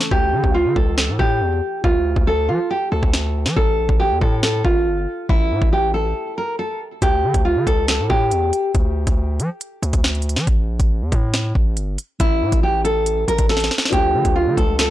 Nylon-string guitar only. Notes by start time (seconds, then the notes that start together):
0.11 G4
0.54 F4
0.76 A4
0.98 A4
1.19 G4
1.84 F4
2.27 A4
2.49 F4
2.71 G4
2.92 A4
3.56 A4
4.00 G4
4.21 A4
4.43 A4
4.65 F4
5.29 E4
5.73 G4
5.94 A4
6.38 A#4
6.59 A4
7.02 G4
7.45 F4
7.67 A4
7.89 A4
8.10 G4
12.20 E4
12.63 G4
12.85 A4
13.28 A#4
13.49 A4
13.93 G4
14.36 F4
14.57 A4
14.79 A4